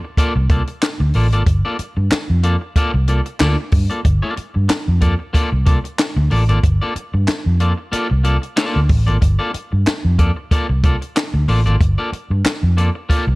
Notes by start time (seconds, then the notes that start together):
0.04 muted clean electric guitar stroke
0.17 A#3 F4 A4 D5, muted fingered electric bass stroke, kick, closed hi-hat
0.36 C2, muted clean electric guitar stroke
0.49 A#3 F4 A4 D5, kick, closed hi-hat
0.67 muted clean electric guitar stroke, closed hi-hat
0.82 muted clean electric guitar stroke, snare, clap, closed hi-hat
1.00 D2, muted clean electric guitar stroke
1.14 A1 A#3 F4 A4 D5, open hi-hat
1.32 G#1 A#3 F4 A4 D5, closed hi-hat
1.47 G1, muted clean electric guitar stroke, kick, closed hi-hat
1.65 A#3 F4 A4 D5
1.79 muted clean electric guitar stroke, muted fingered electric bass stroke, closed hi-hat
1.97 G2, muted clean electric guitar stroke
2.11 muted clean electric guitar stroke, muted fingered electric bass stroke, snare, clap, closed hi-hat
2.30 F2
2.43 A#3 F4 A4 D5, closed hi-hat
2.61 muted clean electric guitar stroke
2.76 A#3 F4 A4 D5, muted fingered electric bass stroke, kick, closed hi-hat
2.94 C2
3.08 A#3 F4 A4 D5, closed hi-hat
3.26 muted clean electric guitar stroke, closed hi-hat
3.39 D2 A#3 F4 A4 D5, snare, clap, closed hi-hat
3.72 G2, muted clean electric guitar stroke, kick, open hi-hat
3.90 A#3 F4 A4 D5, closed hi-hat
4.04 G1, muted clean electric guitar stroke, kick, closed hi-hat
4.22 A#3 F4 A4 D5
4.36 muted clean electric guitar stroke, muted fingered electric bass stroke, closed hi-hat
4.54 G2, muted clean electric guitar stroke
4.68 muted clean electric guitar stroke, muted fingered electric bass stroke, snare, clap, closed hi-hat
4.88 F2
5.01 A#3 F4 A4 D5, kick, closed hi-hat
5.19 muted clean electric guitar stroke
5.33 A#3 F4 A4 D5, muted fingered electric bass stroke, kick, closed hi-hat
5.52 C2
5.66 A#3 F4 A4 D5, kick, closed hi-hat
5.84 muted clean electric guitar stroke, closed hi-hat
5.98 muted clean electric guitar stroke, snare, clap, closed hi-hat
6.16 D2, muted clean electric guitar stroke
6.31 A1 A#3 F4 A4 D5, open hi-hat
6.49 G#1 A#3 F4 A4 D5, closed hi-hat
6.63 G1, muted clean electric guitar stroke, kick, closed hi-hat
6.82 A#3 F4 A4 D5
6.95 muted clean electric guitar stroke, muted fingered electric bass stroke, closed hi-hat
7.14 G2, muted clean electric guitar stroke
7.27 muted fingered electric bass stroke, muted clean electric guitar stroke, snare, clap, closed hi-hat
7.46 F2
7.60 A#3 F4 A4 D5, closed hi-hat
7.77 muted clean electric guitar stroke
7.92 A#3 F4 A4 D5, muted fingered electric bass stroke, closed hi-hat
8.10 C2, muted clean electric guitar stroke
8.24 A#3 F4 A4 D5, closed hi-hat
8.42 muted clean electric guitar stroke, closed hi-hat
8.56 A#3 F4 A4 D5, snare, clap, closed hi-hat
8.76 D2
8.89 A1, muted clean electric guitar stroke, kick, open hi-hat
9.07 G#1 A#3 F4 A4 D5, closed hi-hat
9.21 G1, muted clean electric guitar stroke, kick, closed hi-hat
9.39 A#3 F4 A4 D5
9.53 muted clean electric guitar stroke, muted fingered electric bass stroke, closed hi-hat
9.72 G2, muted clean electric guitar stroke
9.86 muted clean electric guitar stroke, muted fingered electric bass stroke, snare, clap, closed hi-hat
10.05 F2
10.19 A#3 F4 A4 D5, kick, closed hi-hat
10.37 muted clean electric guitar stroke
10.51 A#3 F4 A4 D5, muted fingered electric bass stroke, kick, closed hi-hat
10.69 C2, muted clean electric guitar stroke
10.83 A#3 F4 A4 D5, kick, closed hi-hat
11.02 muted clean electric guitar stroke, closed hi-hat
11.16 muted clean electric guitar stroke, snare, clap, closed hi-hat
11.34 D2, muted clean electric guitar stroke
11.48 A1 A#3 F4 A4 D5, open hi-hat
11.66 G#1 A#3 F4 A4 D5, closed hi-hat
11.80 G1, muted clean electric guitar stroke, kick, closed hi-hat
11.98 A#3 F4 A4 D5
12.12 muted clean electric guitar stroke, muted fingered electric bass stroke, closed hi-hat
12.30 G2, muted clean electric guitar stroke
12.45 muted clean electric guitar stroke, muted fingered electric bass stroke, snare, clap, closed hi-hat
12.63 F2
12.77 A#3 F4 A4 D5, closed hi-hat
12.95 muted clean electric guitar stroke
13.09 A#3 F4 A4 D5, kick, closed hi-hat
13.27 C2